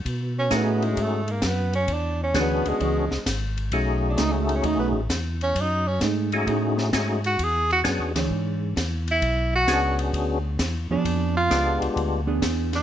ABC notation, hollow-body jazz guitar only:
X:1
M:4/4
L:1/8
Q:"Swing" 1/4=131
K:E
V:1 name="Hollow-body jazz guitar"
z2 [A,DG] z4 z | z2 [E,=DGc] z [E,DGc] z3 | z2 [A,DG] z [A,DG] z3 | z2 [A,DG] z [A,DG] z3 |
z3 [E,=DGc]3 z2 | z6 z [^E,B,=DG]- | [^E,B,=DG]2 z3 [_CD_A]3 |]